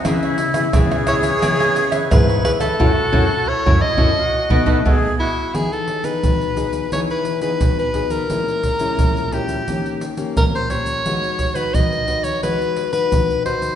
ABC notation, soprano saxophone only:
X:1
M:4/4
L:1/16
Q:1/4=87
K:E
V:1 name="Soprano saxophone"
z6 c c4- c B2 B A- | A4 c2 d6 z2 E2 | G A2 B4- B c B2 B2 B2 ^A- | ^A6 =G4 z2 A =c ^c2- |
c3 B d3 c B3 B3 =c2 |]